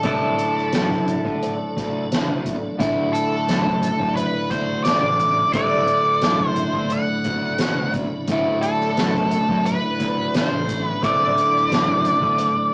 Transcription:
Already playing: F#3 D4 E4 A4 D5
0.02 C2 D2 A2 D3 A3 E4, kick, closed hi-hat
0.39 closed hi-hat
0.57 snare
0.72 F#2, snare, closed hi-hat
0.90 kick, snare
1.08 closed hi-hat
1.25 D3, kick
1.43 closed hi-hat
1.77 D2, kick, snare, closed hi-hat
2.12 snare, closed hi-hat
2.28 D2
2.45 kick, closed hi-hat
2.78 D2 A2 D3 A3 E4, kick, closed hi-hat
2.83 B5
3.13 A4, closed hi-hat
3.48 F#2, snare, closed hi-hat
3.65 kick
3.83 closed hi-hat
3.99 F#2, kick
4.16 B4, closed hi-hat
4.51 D2 C5, kick, snare, closed hi-hat
4.84 D5, snare, closed hi-hat
5.02 A1
5.19 kick, closed hi-hat
5.54 C2 D2 A2 D3 A3 E4 D5, kick, closed hi-hat
5.87 closed hi-hat
6.22 F#2, snare, closed hi-hat
6.39 kick
6.50 C5
6.56 closed hi-hat
6.73 D3, kick
6.90 F#5, closed hi-hat
7.24 D2, kick, closed hi-hat
7.58 snare, closed hi-hat
7.78 D2
7.94 kick, closed hi-hat
8.28 D2 A2 D3 A3, kick, closed hi-hat
8.32 E4
8.62 A4, closed hi-hat
8.81 snare
8.97 F#2, snare, closed hi-hat
9.14 kick, snare
9.31 closed hi-hat
9.49 F#2, kick
9.66 B4, closed hi-hat
10.00 D2, kick, snare, closed hi-hat
10.34 C5, snare, closed hi-hat
10.51 A1
10.69 kick, snare, closed hi-hat
10.85 B4
11.02 C2 D2 A2 D3 A3 E4 D5, kick, closed hi-hat
11.38 closed hi-hat
11.55 snare
11.70 F#2, snare, closed hi-hat
11.88 kick
12.05 closed hi-hat
12.22 D3, kick
12.38 closed hi-hat

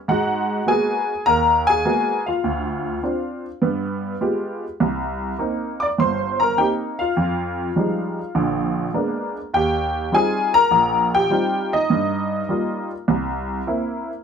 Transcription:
0.08 G#2 G#3 F#4 F#5
0.67 G#3 A#3 B3 F#4 G#5
0.71 G#4
1.26 D#2 A#4 A#5
1.67 G#4 G#5
1.85 G#3 A#3 B3 F#4
2.26 F4 F5
2.44 D2
3.03 C4 D4 F4
3.62 G2 B3
4.21 G#3 B3 F4 G4
4.80 C2
5.39 A#3 C4 D#4
5.80 D5 D6
5.98 G1 C5 C6
6.40 A#4 A#5
6.57 A#3 C4 D#4 G4 G5
6.99 F4 F5
7.17 F2
7.76 F3 G3 G#3 D#4
8.35 A#1 D3
8.94 G#3 A#3 B3 D4
9.54 D#2 G4 G5
10.12 G3 C4 D#4 F4 G#4 G#5
10.54 A#4 A#5
10.71 A#1
11.15 G4 G5
11.30 G3 C4 D#4 F4
11.73 D#4 D#5
11.90 G2
12.49 G3 A#3 F4
13.08 C2
13.67 A#3 C4 E4

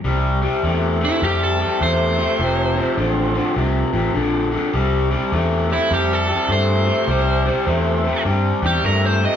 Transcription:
0.04 C2 C3 G3
0.42 C3 G3
0.63 E2 C3 A3
1.01 C3 A3
1.05 E4
1.22 F2 C3 G3 G4
1.43 A4
1.59 C3 G3
1.80 E2 C3 A3 C5
2.18 C3 A3
2.39 F1 F2 C3
2.76 F2 C3
2.97 A1 F2 D3
3.34 F2 D3
3.55 C2 F2 C3
3.93 A1 F2 C3
4.14 A#1 F2 D3
4.51 F2 D3
4.73 C2 C3 G3
5.11 C3 G3
5.32 E2 C3 A3
5.69 C3 A3 E4
5.90 F2 C3 G3 G4
6.13 A4
6.27 C3 G3
6.49 G2 C3 A3 C5
6.85 C3 A3
7.07 C2 C3 G3
7.45 C3 G3
7.67 E2 C3 A3
8.04 C3 A3
8.25 G2 C3 G3
8.62 E2 C3 G3
8.66 G4
8.84 G2 C3 A3 A#4
9.06 C5
9.21 C3 A3
9.25 D#5

